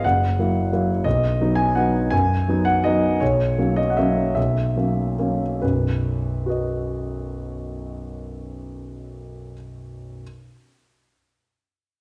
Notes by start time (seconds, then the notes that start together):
0.04 F#1 F#5
0.39 F#3 A#3 E4
0.73 F#3 A#3 E4
1.04 B1 D#5
1.41 F#3 B3 D#4
1.55 G#5
1.75 F#3 B3 D#4 F#5
2.10 F#2 G#5
2.48 F#3 B3 D#4
2.65 F#5
2.84 F#3 B3 D#4 D#5
3.20 B1 C#5
3.58 F#3 A#3 C#4
3.76 D#5
3.90 F#5
3.97 F#3 A#3 C#4 E5
4.35 B1 E5
4.76 F#3 A#3 C#4
5.19 F#3 A#3 C#4
5.61 B1 F#2 B4
6.46 F#4 B4 D#5